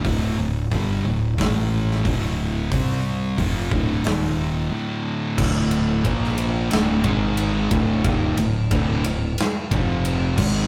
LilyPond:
<<
  \new Staff \with { instrumentName = "Distorted electric guitar" } { \clef bass \time 4/4 \key d \minor \tempo 4 = 90 <d, a, d>8 <d, a,>8 <g, d g>8 <d, a,>8 <a, e a>4 <d, a, d>4 | <c g c'>4 <f, c f>8 <d, a, d>8 <ees, bes, ees>4 <d, a, d>4 | <d, a, d>4 <bes, f bes>4 <d, a, d>8 <gis, dis gis>4 <d, a, d>8 | <ees, bes, ees>8 <d, a,>8 <d, a, d>8 <d, a,>8 r8 <f, c f>4 <gis, ees gis>8 | }
  \new Staff \with { instrumentName = "Distorted electric guitar" } { \clef bass \time 4/4 \key d \minor <d, a, d>8 <d, a,>8 <g, d g>8 <d, a,>8 <a, e a>4 <d, a, d>4 | <c g c'>4 <f, c f>8 <d, a, d>8 <ees, bes, ees>4 <d, a, d>4 | <d, a, d>4 <bes, f bes>4 <d, a, d>8 <gis, dis gis>4 <d, a, d>8 | <ees, bes, ees>8 <d, a,>8 <d, a, d>8 <d, a,>8 r8 <f, c f>4 <gis, ees gis>8 | }
  \new Staff \with { instrumentName = "Distorted electric guitar" } { \clef bass \time 4/4 \key d \minor r1 | r1 | <d, a, d>4 <bes, f bes>4 <d, a, d>8 <gis, dis gis>4 <d, a, d>8 | <ees, bes, ees>8 <d, a,>8 <d, a, d>8 <d, a,>8 r8 <f, c f>4 <gis, ees gis>8 | }
  \new Staff \with { instrumentName = "Fingered electric bass" } { \clef bass \time 4/4 \key d \minor d,,8 d,,8 g,,8 d,,8 a,,4 d,,4 | c,4 f,,8 d,,8 ees,,4 r4 | d,,4 bes,,4 d,,8 gis,,4 d,,8 | ees,,8 d,,8 d,,8 d,,8 r8 f,,4 gis,,8 | }
  \new DrumStaff \with { instrumentName = "Drums" } \drummode { \time 4/4 <hho bd>4 <hho bd>4 <hho bd sn>8. sn16 <hho bd>4 | <hho bd>4 <hho bd>8 bd8 <hho sn>4 r4 | <cymc bd>8 cymr8 <bd cymr>16 sn16 cymr8 <cymr sn>8 <bd cymr>8 cymr8 <bd cymr>8 | <bd cymr>8 cymr8 <bd cymr>8 cymr8 <cymr sn>8 <bd cymr>8 cymr8 <cymc bd>8 | }
>>